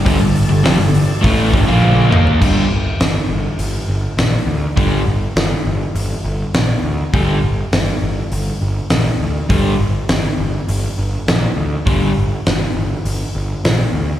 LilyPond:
<<
  \new Staff \with { instrumentName = "Tonewheel organ" } { \time 4/4 \key g \minor \tempo 4 = 102 <g d' a'>1 | r1 | r1 | r1 |
r1 | r1 | }
  \new Staff \with { instrumentName = "Overdriven electric guitar" } { \clef bass \time 4/4 \key g \minor <g, d>16 <g, d>8 <g, d>16 <f, c>16 <g, d>8 r16 <a, e a>8 <g, d>16 <bes, f bes>8. <ees bes ees'>8 | <g, d g>8 r2. r8 | <g, d g>8 r2. r8 | <g, d g>8 r2. r8 |
<g, d g>8 r2. r8 | <g, d g>8 r2. r8 | }
  \new Staff \with { instrumentName = "Picked electric bass" } { \clef bass \time 4/4 \key g \minor g,,16 g,,8 g,,16 f,,16 g,,8 r16 a,,8 g,,16 bes,,8. ees,8 | g,,8 g,,8 g,,8 g,,8 g,,8 g,,8 bes,,8 d,8 | g,,8 g,,8 g,,8 g,,8 g,,8 g,,8 bes,,8 d,8 | g,,8 g,,8 g,,8 g,,8 g,,8 g,,8 bes,,8 d,8 |
g,,8 g,,8 g,,8 g,,8 g,,8 g,,8 bes,,8 d,8 | g,,8 g,,8 g,,8 g,,8 g,,8 g,,8 bes,,8 d,8 | }
  \new DrumStaff \with { instrumentName = "Drums" } \drummode { \time 4/4 <hho bd>8 hho8 <hho sn>8 hho8 <hho bd>8 <hho bd>8 tommh8 toml16 tomfh16 | <cymc bd>4 <hho sn>4 hho4 <hho sn>4 | <hho bd>4 <hho sn>4 hho4 <hho sn>4 | <hho bd>4 <hho sn>4 hho4 <hho sn>4 |
<hho bd>4 <hho sn>4 hho4 <hho sn>4 | <hho bd>4 <hho sn>4 hho4 <hho sn>4 | }
>>